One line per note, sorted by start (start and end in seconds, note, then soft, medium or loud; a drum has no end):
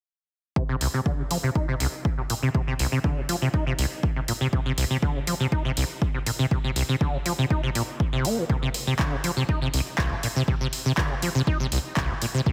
0.56 0.63 C3 medium
0.56 kick loud
0.69 0.76 C3 loud
0.81 0.88 C2 medium
0.81 open hi-hat loud
0.94 1.00 C3 loud
1.06 1.20 D3 medium
1.06 kick loud
1.19 1.23 C3 medium
1.31 1.38 F3 medium
1.31 open hi-hat medium
1.43 1.50 C3 medium
1.55 1.66 D#4 medium
1.55 kick loud
1.68 1.75 C3 loud
1.80 1.87 C2 loud
1.80 open hi-hat medium
2.05 kick loud
2.18 2.22 C3 medium
2.30 2.34 A#2 medium
2.30 open hi-hat loud
2.43 2.49 C3 loud
2.55 2.62 C3 medium
2.55 kick loud
2.67 2.74 C3 medium
2.79 2.86 C2 loud
2.79 open hi-hat loud
2.92 2.99 C3 medium
3.04 3.18 D3 medium
3.04 kick loud
3.17 3.21 C3 medium
3.29 3.36 F3 medium
3.29 open hi-hat loud
3.42 3.48 C3 medium
3.54 3.64 D#4 medium
3.54 kick loud
3.67 3.73 C3 loud
3.79 3.86 C2 medium
3.79 open hi-hat loud
4.03 kick loud
4.16 4.20 C3 medium
4.28 4.32 A#2 medium
4.28 open hi-hat loud
4.41 4.48 C3 loud
4.53 4.60 C3 medium
4.53 kick loud
4.66 4.72 C3 loud
4.78 4.85 C2 loud
4.78 open hi-hat loud
4.91 4.97 C3 medium
5.02 5.17 D3 medium
5.02 kick loud
5.15 5.19 C3 medium
5.27 5.34 F3 medium
5.27 open hi-hat loud
5.40 5.47 C3 medium
5.52 5.63 D#4 medium
5.52 kick loud
5.65 5.71 C3 loud
5.77 5.84 C2 loud
5.77 open hi-hat loud
6.02 kick loud
6.14 6.18 C3 medium
6.26 6.31 A#2 medium
6.26 open hi-hat loud
6.39 6.46 C3 loud
6.51 6.58 C3 medium
6.51 kick loud
6.64 6.71 C3 medium
6.76 6.83 C2 medium
6.76 open hi-hat loud
6.89 6.95 C3 medium
7.01 7.15 D3 medium
7.01 kick loud
7.14 7.18 C3 medium
7.26 7.33 F3 medium
7.26 open hi-hat loud
7.38 7.45 C3 medium
7.50 7.61 D#4 medium
7.50 kick loud
7.63 7.70 C3 loud
7.75 7.82 A#2 medium
7.75 open hi-hat loud
8.00 kick loud
8.13 8.26 C3 medium
8.25 8.39 A#3 medium
8.25 open hi-hat loud
8.38 8.44 D#3 medium
8.50 8.57 C3 medium
8.50 kick loud
8.62 8.69 C3 loud
8.74 open hi-hat loud
8.87 8.94 C3 medium
8.99 9.14 D3 medium
8.99 kick loud
8.99 clap loud
9.12 9.16 C3 medium
9.24 9.31 F3 medium
9.24 open hi-hat loud
9.37 9.43 C3 medium
9.49 9.59 D#4 medium
9.49 kick loud
9.62 9.68 C3 loud
9.74 9.81 C2 medium
9.74 open hi-hat loud
9.98 10.13 C2 loud
9.98 kick loud
9.98 clap loud
10.11 10.15 C3 medium
10.23 10.27 A#2 medium
10.23 open hi-hat loud
10.36 10.43 C3 loud
10.48 10.55 C3 medium
10.48 kick loud
10.61 10.67 C3 loud
10.73 open hi-hat loud
10.86 10.92 C3 medium
10.98 11.12 D3 medium
10.98 kick loud
10.98 clap loud
11.10 11.14 C3 medium
11.22 11.29 F3 medium
11.22 open hi-hat loud
11.35 11.42 C3 loud
11.47 11.58 D#4 medium
11.47 kick loud
11.60 11.67 C3 loud
11.72 11.79 C2 loud
11.72 open hi-hat loud
11.97 12.11 C2 loud
11.97 kick loud
11.97 clap loud
12.10 12.13 C3 medium
12.22 12.26 A#2 medium
12.22 open hi-hat loud
12.34 12.41 C3 loud
12.46 12.52 C3 medium
12.46 kick loud